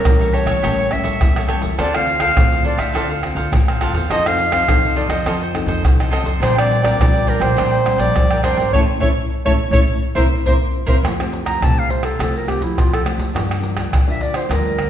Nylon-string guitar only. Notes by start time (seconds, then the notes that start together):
0.06 E3 G3 A#3 C#4
0.64 A2 G3 A#3 C#4
0.91 G3 A#3 C#4
1.21 E3
1.49 G3 A#3 C#4
1.79 D3 C4 F4 A4
1.95 C4 F4 A4
2.21 C4 F4 A4
2.38 A2 C4 F4 A4
2.95 D3 C4 F4 A4
3.23 C4 F4 A4
3.53 A2
3.81 C4 F4 A4
4.12 F3 C4 D#4 A4
4.26 C4 D#4 A4
4.51 C4 D#4 A4
4.68 C3 C4 D#4 A4
5.26 F3 C4 D#4 A4
5.54 C4 D#4 A4
5.84 C3
6.12 C4 D#4 A4
6.43 A#2 G3 C4 D4
6.58 G3 C4 D4
6.83 G3 C4 D4
7.00 F3 G3 C4 D4
7.58 A#2 G3 C4 D4
7.86 G3 C4 D4
8.16 F3
8.44 G3 C4 D4
8.74 A3 C#4 E4
9.02 A3 C#4 E4
9.46 A3 C#4 E4
9.73 A3 C#4 E4
10.16 A#3 C4 E4
10.47 A#3 C4 E4
10.88 A#3 C4 E4
11.05 F3 A3 C4 G4
11.19 A3 C4 G4
11.62 C3 A3 C4 G4
12.19 F3 A3 C4 G4
12.47 A3 C4 G4
12.78 C3
13.04 A3 C4 G4
13.34 G2 F3 A#3 D4
13.61 F3 A#3 D4
13.91 D3
14.07 F3 A#3 D4
14.49 G2 F3 A#3 D4